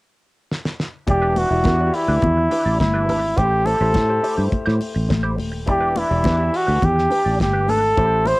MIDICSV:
0, 0, Header, 1, 8, 480
1, 0, Start_track
1, 0, Key_signature, 1, "minor"
1, 0, Tempo, 574163
1, 902, Time_signature, 4, 2, 24, 8
1, 7021, End_track
2, 0, Start_track
2, 0, Title_t, "Clean electric guitar"
2, 0, Program_c, 0, 27
2, 1018, Note_on_c, 0, 71, 84
2, 1024, Note_on_c, 0, 67, 75
2, 1029, Note_on_c, 0, 62, 67
2, 1127, Note_off_c, 0, 62, 0
2, 1136, Note_off_c, 0, 67, 0
2, 1137, Note_on_c, 0, 62, 61
2, 1142, Note_off_c, 0, 71, 0
2, 1146, Note_on_c, 0, 67, 57
2, 1152, Note_on_c, 0, 71, 67
2, 1256, Note_off_c, 0, 71, 0
2, 1257, Note_off_c, 0, 62, 0
2, 1262, Note_off_c, 0, 67, 0
2, 1378, Note_on_c, 0, 62, 95
2, 1383, Note_on_c, 0, 67, 91
2, 1390, Note_on_c, 0, 71, 89
2, 1494, Note_off_c, 0, 71, 0
2, 1505, Note_off_c, 0, 67, 0
2, 1548, Note_off_c, 0, 62, 0
2, 1741, Note_on_c, 0, 71, 60
2, 1745, Note_on_c, 0, 67, 53
2, 1749, Note_on_c, 0, 62, 57
2, 1851, Note_off_c, 0, 62, 0
2, 1857, Note_off_c, 0, 67, 0
2, 1859, Note_off_c, 0, 71, 0
2, 2097, Note_on_c, 0, 62, 75
2, 2105, Note_on_c, 0, 67, 77
2, 2111, Note_on_c, 0, 71, 83
2, 2215, Note_off_c, 0, 67, 0
2, 2215, Note_off_c, 0, 71, 0
2, 2218, Note_on_c, 0, 74, 55
2, 2223, Note_off_c, 0, 62, 0
2, 2225, Note_on_c, 0, 67, 56
2, 2233, Note_on_c, 0, 62, 55
2, 2330, Note_off_c, 0, 62, 0
2, 2337, Note_off_c, 0, 67, 0
2, 2338, Note_off_c, 0, 74, 0
2, 2455, Note_on_c, 0, 71, 74
2, 2460, Note_on_c, 0, 67, 67
2, 2468, Note_on_c, 0, 62, 66
2, 2563, Note_off_c, 0, 62, 0
2, 2571, Note_off_c, 0, 67, 0
2, 2573, Note_on_c, 0, 62, 60
2, 2576, Note_off_c, 0, 71, 0
2, 2581, Note_on_c, 0, 67, 62
2, 2586, Note_on_c, 0, 71, 72
2, 2683, Note_off_c, 0, 71, 0
2, 2693, Note_off_c, 0, 67, 0
2, 2696, Note_off_c, 0, 62, 0
2, 2813, Note_on_c, 0, 64, 79
2, 2820, Note_on_c, 0, 67, 84
2, 2826, Note_on_c, 0, 72, 88
2, 2968, Note_off_c, 0, 64, 0
2, 2972, Note_off_c, 0, 67, 0
2, 2974, Note_off_c, 0, 72, 0
2, 3053, Note_on_c, 0, 64, 60
2, 3060, Note_on_c, 0, 67, 70
2, 3066, Note_on_c, 0, 72, 65
2, 3167, Note_off_c, 0, 72, 0
2, 3174, Note_off_c, 0, 67, 0
2, 3176, Note_off_c, 0, 64, 0
2, 3177, Note_on_c, 0, 72, 65
2, 3184, Note_on_c, 0, 67, 58
2, 3188, Note_on_c, 0, 64, 55
2, 3290, Note_off_c, 0, 64, 0
2, 3293, Note_off_c, 0, 67, 0
2, 3298, Note_off_c, 0, 72, 0
2, 3537, Note_on_c, 0, 64, 81
2, 3543, Note_on_c, 0, 67, 86
2, 3549, Note_on_c, 0, 72, 87
2, 3645, Note_off_c, 0, 72, 0
2, 3653, Note_off_c, 0, 67, 0
2, 3655, Note_on_c, 0, 72, 62
2, 3657, Note_off_c, 0, 64, 0
2, 3663, Note_on_c, 0, 67, 52
2, 3667, Note_on_c, 0, 64, 44
2, 3764, Note_off_c, 0, 64, 0
2, 3772, Note_off_c, 0, 67, 0
2, 3777, Note_off_c, 0, 72, 0
2, 3892, Note_on_c, 0, 72, 91
2, 3896, Note_on_c, 0, 67, 80
2, 3905, Note_on_c, 0, 64, 63
2, 4004, Note_off_c, 0, 64, 0
2, 4011, Note_off_c, 0, 67, 0
2, 4012, Note_off_c, 0, 72, 0
2, 4373, Note_on_c, 0, 72, 73
2, 4377, Note_on_c, 0, 67, 68
2, 4383, Note_on_c, 0, 64, 58
2, 4484, Note_off_c, 0, 64, 0
2, 4488, Note_off_c, 0, 67, 0
2, 4492, Note_off_c, 0, 72, 0
2, 4853, Note_on_c, 0, 71, 78
2, 4862, Note_on_c, 0, 67, 72
2, 4866, Note_on_c, 0, 62, 68
2, 4968, Note_off_c, 0, 62, 0
2, 4976, Note_off_c, 0, 67, 0
2, 4978, Note_on_c, 0, 62, 68
2, 4980, Note_off_c, 0, 71, 0
2, 4986, Note_on_c, 0, 67, 61
2, 4990, Note_on_c, 0, 71, 68
2, 5093, Note_off_c, 0, 71, 0
2, 5099, Note_off_c, 0, 62, 0
2, 5103, Note_off_c, 0, 67, 0
2, 5218, Note_on_c, 0, 62, 79
2, 5223, Note_on_c, 0, 67, 84
2, 5233, Note_on_c, 0, 71, 95
2, 5329, Note_off_c, 0, 71, 0
2, 5338, Note_off_c, 0, 67, 0
2, 5372, Note_off_c, 0, 62, 0
2, 5575, Note_on_c, 0, 71, 59
2, 5580, Note_on_c, 0, 67, 49
2, 5589, Note_on_c, 0, 62, 48
2, 5685, Note_off_c, 0, 62, 0
2, 5692, Note_off_c, 0, 67, 0
2, 5695, Note_off_c, 0, 71, 0
2, 5935, Note_on_c, 0, 62, 79
2, 5942, Note_on_c, 0, 67, 74
2, 5947, Note_on_c, 0, 71, 89
2, 6056, Note_off_c, 0, 71, 0
2, 6057, Note_off_c, 0, 67, 0
2, 6060, Note_on_c, 0, 74, 59
2, 6063, Note_off_c, 0, 62, 0
2, 6067, Note_on_c, 0, 67, 58
2, 6073, Note_on_c, 0, 62, 60
2, 6171, Note_off_c, 0, 62, 0
2, 6176, Note_off_c, 0, 67, 0
2, 6180, Note_off_c, 0, 74, 0
2, 6297, Note_on_c, 0, 71, 78
2, 6305, Note_on_c, 0, 67, 76
2, 6309, Note_on_c, 0, 62, 71
2, 6408, Note_off_c, 0, 62, 0
2, 6416, Note_off_c, 0, 67, 0
2, 6418, Note_off_c, 0, 71, 0
2, 6418, Note_on_c, 0, 62, 62
2, 6426, Note_on_c, 0, 67, 67
2, 6428, Note_on_c, 0, 71, 67
2, 6535, Note_off_c, 0, 71, 0
2, 6539, Note_off_c, 0, 62, 0
2, 6541, Note_off_c, 0, 67, 0
2, 6666, Note_on_c, 0, 64, 73
2, 6672, Note_on_c, 0, 67, 82
2, 6678, Note_on_c, 0, 72, 77
2, 6816, Note_off_c, 0, 64, 0
2, 6818, Note_off_c, 0, 67, 0
2, 6822, Note_off_c, 0, 72, 0
2, 6907, Note_on_c, 0, 64, 63
2, 6916, Note_on_c, 0, 67, 58
2, 6920, Note_on_c, 0, 72, 59
2, 7021, Note_off_c, 0, 64, 0
2, 7021, Note_off_c, 0, 67, 0
2, 7021, Note_off_c, 0, 72, 0
2, 7021, End_track
3, 0, Start_track
3, 0, Title_t, "Flugelhorn"
3, 0, Program_c, 1, 56
3, 912, Note_on_c, 1, 67, 98
3, 1150, Note_on_c, 1, 66, 85
3, 1163, Note_off_c, 1, 67, 0
3, 1625, Note_on_c, 1, 64, 92
3, 1638, Note_off_c, 1, 66, 0
3, 2337, Note_off_c, 1, 64, 0
3, 2342, Note_on_c, 1, 64, 88
3, 2823, Note_on_c, 1, 67, 101
3, 2835, Note_off_c, 1, 64, 0
3, 3059, Note_on_c, 1, 69, 96
3, 3072, Note_off_c, 1, 67, 0
3, 3782, Note_off_c, 1, 69, 0
3, 4762, Note_on_c, 1, 67, 86
3, 4998, Note_on_c, 1, 64, 88
3, 5011, Note_off_c, 1, 67, 0
3, 5488, Note_on_c, 1, 66, 85
3, 5500, Note_off_c, 1, 64, 0
3, 5726, Note_on_c, 1, 67, 94
3, 5738, Note_off_c, 1, 66, 0
3, 6196, Note_off_c, 1, 67, 0
3, 6202, Note_on_c, 1, 67, 92
3, 6434, Note_on_c, 1, 69, 114
3, 6446, Note_off_c, 1, 67, 0
3, 6916, Note_on_c, 1, 72, 105
3, 6929, Note_off_c, 1, 69, 0
3, 7021, Note_off_c, 1, 72, 0
3, 7021, End_track
4, 0, Start_track
4, 0, Title_t, "Grand piano"
4, 0, Program_c, 2, 0
4, 893, Note_on_c, 2, 52, 68
4, 899, Note_on_c, 2, 64, 57
4, 901, Note_on_c, 2, 67, 57
4, 905, Note_on_c, 2, 74, 76
4, 1070, Control_c, 2, 64, 127
4, 1216, Note_off_c, 2, 52, 0
4, 1218, Note_off_c, 2, 64, 0
4, 1220, Note_off_c, 2, 67, 0
4, 1222, Note_off_c, 2, 74, 0
4, 1251, Note_on_c, 2, 52, 69
4, 1256, Note_on_c, 2, 64, 66
4, 1262, Note_on_c, 2, 67, 62
4, 1266, Note_on_c, 2, 74, 73
4, 1469, Note_off_c, 2, 52, 0
4, 1471, Note_off_c, 2, 64, 0
4, 1474, Note_off_c, 2, 67, 0
4, 1476, Note_off_c, 2, 74, 0
4, 1496, Note_on_c, 2, 52, 74
4, 1500, Note_on_c, 2, 64, 60
4, 1503, Note_on_c, 2, 66, 53
4, 1508, Note_on_c, 2, 74, 77
4, 1558, Note_off_c, 2, 66, 0
4, 1559, Note_on_c, 2, 67, 70
4, 2348, Note_off_c, 2, 52, 0
4, 2349, Note_off_c, 2, 64, 0
4, 2354, Note_off_c, 2, 74, 0
4, 2379, Note_off_c, 2, 67, 0
4, 2814, Note_on_c, 2, 57, 75
4, 2818, Note_on_c, 2, 64, 68
4, 2823, Note_on_c, 2, 67, 66
4, 2827, Note_on_c, 2, 72, 73
4, 2835, Control_c, 2, 64, 0
4, 2971, Control_c, 2, 64, 127
4, 3137, Note_off_c, 2, 57, 0
4, 3138, Note_off_c, 2, 64, 0
4, 3141, Note_off_c, 2, 67, 0
4, 3143, Note_off_c, 2, 72, 0
4, 3177, Note_on_c, 2, 57, 73
4, 3182, Note_on_c, 2, 64, 67
4, 3187, Note_on_c, 2, 67, 67
4, 3189, Note_on_c, 2, 72, 86
4, 3392, Note_off_c, 2, 57, 0
4, 3395, Note_off_c, 2, 64, 0
4, 3397, Note_off_c, 2, 67, 0
4, 3398, Note_off_c, 2, 72, 0
4, 3413, Note_on_c, 2, 57, 71
4, 3417, Note_on_c, 2, 64, 65
4, 3420, Note_on_c, 2, 67, 72
4, 3424, Note_on_c, 2, 72, 80
4, 4267, Note_off_c, 2, 57, 0
4, 4268, Note_off_c, 2, 64, 0
4, 4270, Note_off_c, 2, 67, 0
4, 4272, Note_off_c, 2, 72, 0
4, 4736, Note_on_c, 2, 52, 67
4, 4743, Note_on_c, 2, 64, 67
4, 4745, Note_on_c, 2, 67, 65
4, 4748, Note_on_c, 2, 74, 84
4, 4754, Control_c, 2, 64, 0
4, 4881, Control_c, 2, 64, 127
4, 5058, Note_off_c, 2, 52, 0
4, 5062, Note_off_c, 2, 64, 0
4, 5062, Note_off_c, 2, 67, 0
4, 5064, Note_off_c, 2, 74, 0
4, 5099, Note_on_c, 2, 52, 74
4, 5102, Note_on_c, 2, 64, 68
4, 5107, Note_on_c, 2, 67, 63
4, 5112, Note_on_c, 2, 74, 83
4, 5314, Note_off_c, 2, 52, 0
4, 5315, Note_off_c, 2, 64, 0
4, 5318, Note_off_c, 2, 67, 0
4, 5320, Note_off_c, 2, 74, 0
4, 5336, Note_on_c, 2, 52, 65
4, 5341, Note_on_c, 2, 64, 73
4, 5342, Note_on_c, 2, 67, 68
4, 5349, Note_on_c, 2, 76, 80
4, 6189, Note_off_c, 2, 52, 0
4, 6191, Note_off_c, 2, 64, 0
4, 6192, Note_off_c, 2, 67, 0
4, 6195, Note_off_c, 2, 76, 0
4, 6656, Note_on_c, 2, 57, 70
4, 6660, Note_on_c, 2, 64, 66
4, 6665, Note_on_c, 2, 67, 63
4, 6668, Note_on_c, 2, 72, 84
4, 6676, Control_c, 2, 64, 0
4, 6824, Control_c, 2, 64, 127
4, 6979, Note_off_c, 2, 57, 0
4, 6981, Note_off_c, 2, 64, 0
4, 6983, Note_off_c, 2, 67, 0
4, 6985, Note_off_c, 2, 72, 0
4, 7021, End_track
5, 0, Start_track
5, 0, Title_t, "Fingered electric bass"
5, 0, Program_c, 3, 33
5, 902, Note_on_c, 3, 28, 88
5, 1203, Note_off_c, 3, 28, 0
5, 1259, Note_on_c, 3, 28, 78
5, 1361, Note_off_c, 3, 28, 0
5, 1381, Note_on_c, 3, 40, 100
5, 1582, Note_off_c, 3, 40, 0
5, 1740, Note_on_c, 3, 38, 86
5, 1841, Note_off_c, 3, 38, 0
5, 1860, Note_on_c, 3, 40, 89
5, 2062, Note_off_c, 3, 40, 0
5, 2222, Note_on_c, 3, 33, 82
5, 2322, Note_off_c, 3, 33, 0
5, 2342, Note_on_c, 3, 31, 84
5, 2585, Note_off_c, 3, 31, 0
5, 2585, Note_on_c, 3, 32, 88
5, 2785, Note_off_c, 3, 32, 0
5, 2823, Note_on_c, 3, 33, 95
5, 3124, Note_off_c, 3, 33, 0
5, 3183, Note_on_c, 3, 33, 96
5, 3284, Note_off_c, 3, 33, 0
5, 3302, Note_on_c, 3, 45, 85
5, 3503, Note_off_c, 3, 45, 0
5, 3660, Note_on_c, 3, 43, 80
5, 3762, Note_off_c, 3, 43, 0
5, 3905, Note_on_c, 3, 45, 91
5, 4005, Note_off_c, 3, 45, 0
5, 4145, Note_on_c, 3, 33, 78
5, 4245, Note_off_c, 3, 33, 0
5, 4266, Note_on_c, 3, 33, 89
5, 4505, Note_off_c, 3, 33, 0
5, 4505, Note_on_c, 3, 27, 97
5, 4746, Note_off_c, 3, 27, 0
5, 4746, Note_on_c, 3, 28, 85
5, 5046, Note_off_c, 3, 28, 0
5, 5107, Note_on_c, 3, 28, 85
5, 5206, Note_off_c, 3, 28, 0
5, 5227, Note_on_c, 3, 40, 91
5, 5426, Note_off_c, 3, 40, 0
5, 5584, Note_on_c, 3, 38, 80
5, 5685, Note_off_c, 3, 38, 0
5, 5703, Note_on_c, 3, 40, 100
5, 5904, Note_off_c, 3, 40, 0
5, 6067, Note_on_c, 3, 33, 85
5, 6166, Note_off_c, 3, 33, 0
5, 6189, Note_on_c, 3, 31, 91
5, 6427, Note_off_c, 3, 31, 0
5, 6427, Note_on_c, 3, 32, 88
5, 6627, Note_off_c, 3, 32, 0
5, 6668, Note_on_c, 3, 33, 96
5, 6967, Note_off_c, 3, 33, 0
5, 7021, End_track
6, 0, Start_track
6, 0, Title_t, "Muted clean electric guitar strokes"
6, 899, Note_on_c, 9, 29, 40
6, 982, Note_off_c, 9, 29, 0
6, 1504, Note_on_c, 9, 29, 46
6, 1587, Note_off_c, 9, 29, 0
6, 1622, Note_on_c, 9, 29, 33
6, 1706, Note_off_c, 9, 29, 0
6, 1984, Note_on_c, 9, 29, 48
6, 2068, Note_off_c, 9, 29, 0
6, 2340, Note_on_c, 9, 29, 43
6, 2423, Note_off_c, 9, 29, 0
6, 2693, Note_on_c, 9, 29, 37
6, 2776, Note_off_c, 9, 29, 0
6, 3300, Note_on_c, 9, 29, 47
6, 3383, Note_off_c, 9, 29, 0
6, 3418, Note_on_c, 9, 29, 47
6, 3502, Note_off_c, 9, 29, 0
6, 3774, Note_on_c, 9, 29, 42
6, 3858, Note_off_c, 9, 29, 0
6, 4014, Note_on_c, 9, 29, 38
6, 4097, Note_off_c, 9, 29, 0
6, 4134, Note_on_c, 9, 29, 46
6, 4217, Note_off_c, 9, 29, 0
6, 4253, Note_on_c, 9, 29, 42
6, 4336, Note_off_c, 9, 29, 0
6, 4494, Note_on_c, 9, 29, 47
6, 4577, Note_off_c, 9, 29, 0
6, 4613, Note_on_c, 9, 29, 46
6, 4697, Note_off_c, 9, 29, 0
6, 4734, Note_on_c, 9, 29, 44
6, 4818, Note_off_c, 9, 29, 0
6, 5103, Note_on_c, 9, 29, 46
6, 5187, Note_off_c, 9, 29, 0
6, 5339, Note_on_c, 9, 29, 54
6, 5423, Note_off_c, 9, 29, 0
6, 5454, Note_on_c, 9, 29, 38
6, 5538, Note_off_c, 9, 29, 0
6, 5695, Note_on_c, 9, 29, 32
6, 5779, Note_off_c, 9, 29, 0
6, 5817, Note_on_c, 9, 29, 35
6, 5901, Note_off_c, 9, 29, 0
6, 6181, Note_on_c, 9, 29, 38
6, 6265, Note_off_c, 9, 29, 0
6, 6545, Note_on_c, 9, 29, 41
6, 6628, Note_off_c, 9, 29, 0
6, 7021, End_track
7, 0, Start_track
7, 0, Title_t, "Muted fingered electric bass strokes"
7, 3780, Note_on_c, 9, 29, 45
7, 3864, Note_off_c, 9, 29, 0
7, 7021, End_track
8, 0, Start_track
8, 0, Title_t, "Drums"
8, 430, Note_on_c, 9, 38, 67
8, 514, Note_off_c, 9, 38, 0
8, 546, Note_on_c, 9, 38, 77
8, 630, Note_off_c, 9, 38, 0
8, 667, Note_on_c, 9, 38, 79
8, 751, Note_off_c, 9, 38, 0
8, 898, Note_on_c, 9, 42, 60
8, 900, Note_on_c, 9, 36, 115
8, 903, Note_on_c, 9, 62, 54
8, 982, Note_off_c, 9, 42, 0
8, 984, Note_off_c, 9, 36, 0
8, 987, Note_off_c, 9, 62, 0
8, 1139, Note_on_c, 9, 46, 57
8, 1139, Note_on_c, 9, 62, 56
8, 1222, Note_off_c, 9, 62, 0
8, 1223, Note_off_c, 9, 46, 0
8, 1370, Note_on_c, 9, 63, 71
8, 1376, Note_on_c, 9, 42, 56
8, 1382, Note_on_c, 9, 36, 107
8, 1385, Note_on_c, 9, 38, 98
8, 1454, Note_off_c, 9, 63, 0
8, 1460, Note_off_c, 9, 42, 0
8, 1466, Note_off_c, 9, 36, 0
8, 1468, Note_off_c, 9, 38, 0
8, 1619, Note_on_c, 9, 46, 80
8, 1703, Note_off_c, 9, 46, 0
8, 1857, Note_on_c, 9, 42, 61
8, 1860, Note_on_c, 9, 36, 92
8, 1868, Note_on_c, 9, 62, 52
8, 1868, Note_on_c, 9, 64, 73
8, 1941, Note_off_c, 9, 42, 0
8, 1944, Note_off_c, 9, 36, 0
8, 1952, Note_off_c, 9, 62, 0
8, 1952, Note_off_c, 9, 64, 0
8, 2099, Note_on_c, 9, 62, 37
8, 2103, Note_on_c, 9, 46, 67
8, 2183, Note_off_c, 9, 62, 0
8, 2187, Note_off_c, 9, 46, 0
8, 2342, Note_on_c, 9, 36, 87
8, 2346, Note_on_c, 9, 42, 59
8, 2348, Note_on_c, 9, 63, 79
8, 2350, Note_on_c, 9, 38, 103
8, 2426, Note_off_c, 9, 36, 0
8, 2430, Note_off_c, 9, 42, 0
8, 2431, Note_off_c, 9, 63, 0
8, 2434, Note_off_c, 9, 38, 0
8, 2584, Note_on_c, 9, 46, 73
8, 2584, Note_on_c, 9, 63, 61
8, 2668, Note_off_c, 9, 46, 0
8, 2668, Note_off_c, 9, 63, 0
8, 2823, Note_on_c, 9, 36, 115
8, 2823, Note_on_c, 9, 62, 55
8, 2824, Note_on_c, 9, 42, 59
8, 2906, Note_off_c, 9, 36, 0
8, 2907, Note_off_c, 9, 62, 0
8, 2908, Note_off_c, 9, 42, 0
8, 3059, Note_on_c, 9, 62, 53
8, 3068, Note_on_c, 9, 46, 55
8, 3143, Note_off_c, 9, 62, 0
8, 3151, Note_off_c, 9, 46, 0
8, 3295, Note_on_c, 9, 63, 66
8, 3297, Note_on_c, 9, 42, 64
8, 3303, Note_on_c, 9, 36, 104
8, 3306, Note_on_c, 9, 38, 97
8, 3379, Note_off_c, 9, 63, 0
8, 3381, Note_off_c, 9, 42, 0
8, 3387, Note_off_c, 9, 36, 0
8, 3390, Note_off_c, 9, 38, 0
8, 3544, Note_on_c, 9, 46, 68
8, 3628, Note_off_c, 9, 46, 0
8, 3780, Note_on_c, 9, 36, 100
8, 3780, Note_on_c, 9, 42, 61
8, 3787, Note_on_c, 9, 62, 48
8, 3863, Note_off_c, 9, 42, 0
8, 3864, Note_off_c, 9, 36, 0
8, 3870, Note_off_c, 9, 62, 0
8, 3915, Note_on_c, 9, 38, 34
8, 3999, Note_off_c, 9, 38, 0
8, 4019, Note_on_c, 9, 62, 40
8, 4025, Note_on_c, 9, 46, 72
8, 4103, Note_off_c, 9, 62, 0
8, 4108, Note_off_c, 9, 46, 0
8, 4265, Note_on_c, 9, 36, 84
8, 4267, Note_on_c, 9, 63, 69
8, 4268, Note_on_c, 9, 42, 61
8, 4272, Note_on_c, 9, 38, 96
8, 4348, Note_off_c, 9, 36, 0
8, 4351, Note_off_c, 9, 42, 0
8, 4351, Note_off_c, 9, 63, 0
8, 4355, Note_off_c, 9, 38, 0
8, 4501, Note_on_c, 9, 63, 58
8, 4510, Note_on_c, 9, 46, 75
8, 4584, Note_off_c, 9, 63, 0
8, 4593, Note_off_c, 9, 46, 0
8, 4743, Note_on_c, 9, 62, 50
8, 4745, Note_on_c, 9, 36, 116
8, 4747, Note_on_c, 9, 42, 61
8, 4826, Note_off_c, 9, 62, 0
8, 4829, Note_off_c, 9, 36, 0
8, 4830, Note_off_c, 9, 42, 0
8, 4980, Note_on_c, 9, 62, 55
8, 4992, Note_on_c, 9, 46, 56
8, 5064, Note_off_c, 9, 62, 0
8, 5076, Note_off_c, 9, 46, 0
8, 5216, Note_on_c, 9, 63, 64
8, 5225, Note_on_c, 9, 42, 58
8, 5227, Note_on_c, 9, 36, 100
8, 5234, Note_on_c, 9, 38, 112
8, 5300, Note_off_c, 9, 63, 0
8, 5309, Note_off_c, 9, 42, 0
8, 5310, Note_off_c, 9, 36, 0
8, 5318, Note_off_c, 9, 38, 0
8, 5466, Note_on_c, 9, 46, 80
8, 5550, Note_off_c, 9, 46, 0
8, 5703, Note_on_c, 9, 36, 99
8, 5703, Note_on_c, 9, 42, 53
8, 5708, Note_on_c, 9, 62, 50
8, 5708, Note_on_c, 9, 64, 70
8, 5787, Note_off_c, 9, 36, 0
8, 5787, Note_off_c, 9, 42, 0
8, 5792, Note_off_c, 9, 62, 0
8, 5792, Note_off_c, 9, 64, 0
8, 5837, Note_on_c, 9, 38, 37
8, 5921, Note_off_c, 9, 38, 0
8, 5941, Note_on_c, 9, 62, 36
8, 5947, Note_on_c, 9, 46, 65
8, 6024, Note_off_c, 9, 62, 0
8, 6031, Note_off_c, 9, 46, 0
8, 6186, Note_on_c, 9, 36, 93
8, 6191, Note_on_c, 9, 42, 54
8, 6192, Note_on_c, 9, 63, 69
8, 6195, Note_on_c, 9, 38, 97
8, 6270, Note_off_c, 9, 36, 0
8, 6274, Note_off_c, 9, 42, 0
8, 6276, Note_off_c, 9, 63, 0
8, 6278, Note_off_c, 9, 38, 0
8, 6422, Note_on_c, 9, 63, 58
8, 6429, Note_on_c, 9, 46, 69
8, 6505, Note_off_c, 9, 63, 0
8, 6512, Note_off_c, 9, 46, 0
8, 6666, Note_on_c, 9, 36, 111
8, 6666, Note_on_c, 9, 42, 56
8, 6667, Note_on_c, 9, 62, 49
8, 6750, Note_off_c, 9, 36, 0
8, 6750, Note_off_c, 9, 42, 0
8, 6751, Note_off_c, 9, 62, 0
8, 6901, Note_on_c, 9, 62, 52
8, 6913, Note_on_c, 9, 46, 63
8, 6985, Note_off_c, 9, 62, 0
8, 6997, Note_off_c, 9, 46, 0
8, 7021, End_track
0, 0, End_of_file